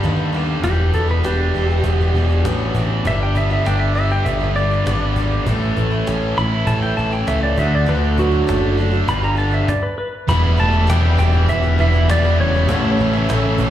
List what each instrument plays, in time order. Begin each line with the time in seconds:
Already playing: distorted electric guitar G2 D3 G3 D4, overdriven electric guitar G3 D4
0.03 picked electric bass D#2, steel-string acoustic guitar G2 D3 G3 B3 D4 G4
0.33 steel-string acoustic guitar G3 B3 D4 G4
0.63 picked electric bass E1, steel-string acoustic guitar E2 B2 E3 G3 D4 G4, tonewheel organ B3 E4 G4 D5, electric slide guitar G4, cajon bass
0.94 picked electric bass E1, overdriven electric guitar B3, electric slide guitar A4, cajon bass
1.08 steel-string acoustic guitar E3 G3 D4 G4, electric slide guitar B4, cajon slap
1.23 picked electric bass E1, steel-string acoustic guitar E2 B2 E3 G3 D4 G4, electric slide guitar G4, cajon slap
1.54 picked electric bass E1, steel-string acoustic guitar E3 G3 D4 G4
1.69 steel-string acoustic guitar E3 G3 D4 G4
1.84 picked electric bass E1, overdriven electric guitar B3, cajon bass
2.00 steel-string acoustic guitar E3 G3 D4 G4
2.14 picked electric bass E1, steel-string acoustic guitar E3 G3 D4
2.18 steel-string acoustic guitar G4
2.29 steel-string acoustic guitar E3 G3 D4 G4
2.44 picked electric bass A1, steel-string acoustic guitar E2 B2 E3 G3 D4 G4, overdriven electric guitar B3, cajon slap
2.74 picked electric bass A1, steel-string acoustic guitar E3 G3 D4 G4, cajon bass
3.05 picked electric bass G1, steel-string acoustic guitar G2 D3 G3 B3 D4 G4, tonewheel organ B3 D4 G4 D5, electric slide guitar E5, cajon bass
3.23 electric slide guitar G5
3.35 overdriven electric guitar B3, electric slide guitar E5, cajon bass
3.50 steel-string acoustic guitar G3 B3 D4 G4, electric slide guitar E5
3.65 picked electric bass G1, steel-string acoustic guitar G2 D3 G3 B3 D4 G4, electric slide guitar G5, cajon slap
3.80 electric slide guitar E5
3.95 steel-string acoustic guitar G3 B3 D4 G4, electric slide guitar E5
4.10 steel-string acoustic guitar G3 B3 D4 G4, electric slide guitar G5
4.25 picked electric bass G1, overdriven electric guitar B3, electric slide guitar E5, cajon bass
4.40 steel-string acoustic guitar G3 B3 D4 G4
4.55 steel-string acoustic guitar G3 B3 D4 G4, electric slide guitar D5
4.71 steel-string acoustic guitar G3 B3 D4 G4
4.86 picked electric bass G#1, steel-string acoustic guitar G2 D3 G3 B3 D4 G4, cajon slap
5.16 steel-string acoustic guitar G3 B3 D4 G4, cajon bass
5.46 picked electric bass A1, steel-string acoustic guitar A2 E3 A3 C#4 E4, tonewheel organ A3 C#4 E4 C#5, cajon bass
5.76 picked electric bass A1, overdriven electric guitar A3, cajon bass
5.91 steel-string acoustic guitar A3 C#4 E4
6.07 picked electric bass A1, steel-string acoustic guitar A2 E3 A3 C#4 E4, cajon slap
6.37 picked electric bass A1, steel-string acoustic guitar E3 A3 C#4 E4, electric slide guitar B5
6.52 steel-string acoustic guitar A3 C#4 E4
6.66 picked electric bass A1, overdriven electric guitar A3, electric slide guitar A5, cajon bass
6.82 steel-string acoustic guitar A3 C#4 E4, electric slide guitar G5
6.97 picked electric bass A1, steel-string acoustic guitar E3 A3 C#4 E4, electric slide guitar A5
7.12 steel-string acoustic guitar A3 C#4 E4, electric slide guitar G5
7.27 picked electric bass C#2, steel-string acoustic guitar A2 E3 A3 C#4 E4, electric slide guitar E5, cajon slap
7.43 electric slide guitar D5
7.56 picked electric bass D2, steel-string acoustic guitar D3 A3 D4 F#4, tonewheel organ A3 D4 F#4 D5, electric slide guitar E5, cajon bass
7.75 electric slide guitar D5
7.86 picked electric bass D2, steel-string acoustic guitar D3 A3 D4 F#4, electric slide guitar B4
8.18 overdriven electric guitar F#3, electric slide guitar F#4, cajon bass
8.32 steel-string acoustic guitar A3 D4 F#4
8.47 picked electric bass F#1, steel-string acoustic guitar D3 A3 D4 F#4, cajon slap
8.77 steel-string acoustic guitar D3 A3 D4 F#4
8.91 steel-string acoustic guitar A3 D4 F#4
9.07 picked electric bass G1, steel-string acoustic guitar G2 D3 G3 B3 D4 G4, tonewheel organ B3 D4 G4 D5, electric slide guitar B5, cajon bass
9.22 steel-string acoustic guitar G3 B3 D4 G4, electric slide guitar A#5
9.36 overdriven electric guitar D3, steel-string acoustic guitar G3 B3 D4 G4, electric slide guitar A5
9.51 steel-string acoustic guitar G3 B3 D4 G4, electric slide guitar E5
9.68 electric slide guitar D5, cajon bass, cajon slap
9.83 electric slide guitar B4
9.98 electric slide guitar B4
10.28 picked electric bass E1, steel-string acoustic guitar E2 B2 E3 G3 E4 G4, tonewheel organ B3 E4 G4 E5, overdriven electric guitar B3, lead electric guitar B3, electric slide guitar B5, cajon bass
10.57 picked electric bass E1, steel-string acoustic guitar E3 G3 E4 G4, lead electric guitar A3, distorted electric guitar B3, electric slide guitar A5
10.72 steel-string acoustic guitar E3 G3 E4 G4, overdriven electric guitar B3
10.87 picked electric bass E1, steel-string acoustic guitar E2 B2 E3 G3 E4 G4, overdriven electric guitar B3, electric slide guitar G5, cajon slap
11.03 overdriven electric guitar G3 B3 E4
11.17 picked electric bass E1, steel-string acoustic guitar E3 G3 E4 G4, overdriven electric guitar B3, electric slide guitar G5, muted distorted electric guitar stroke, cajon bass
11.32 steel-string acoustic guitar E3 G3 E4 G4, distorted electric guitar B3, muted overdriven electric guitar stroke, cajon slap
11.48 picked electric bass E1, lead electric guitar E3, electric slide guitar E5, cajon bass
11.63 steel-string acoustic guitar E3 G3 E4 G4
11.78 picked electric bass E1, steel-string acoustic guitar E3 G3 E4 G4, overdriven electric guitar B3, electric slide guitar E5
11.93 steel-string acoustic guitar E3 G3 E4 G4, distorted electric guitar B3, muted overdriven electric guitar stroke
12.09 picked electric bass E1, steel-string acoustic guitar E2 B2 E3 G3 E4 G4, overdriven electric guitar B3, electric slide guitar D5, cajon slap
12.25 steel-string acoustic guitar E3 G3 E4 G4, distorted electric guitar B3
12.38 picked electric bass E1, lead electric guitar C#3, overdriven electric guitar E3 G3 B3 E4, electric slide guitar C#5
12.54 steel-string acoustic guitar E3 G3 E4 G4, overdriven electric guitar B3
12.69 picked electric bass A1, steel-string acoustic guitar A2 E3 A3 C#4 A4, tonewheel organ C#4 E4 A4 E5, overdriven electric guitar E4, cajon bass
12.98 picked electric bass A1, steel-string acoustic guitar E3 A3 C#4 A4, distorted electric guitar E4
13.13 steel-string acoustic guitar C#4 A4, overdriven electric guitar E4, cajon slap
13.17 steel-string acoustic guitar A3
13.29 picked electric bass A1, steel-string acoustic guitar A2 E3 A3 C#4 A4, overdriven electric guitar E4, cajon slap
13.43 overdriven electric guitar A3 C#4 E4
13.58 picked electric bass A1, steel-string acoustic guitar E3 A3 C#4 A4, overdriven electric guitar E4, muted distorted electric guitar stroke, cajon bass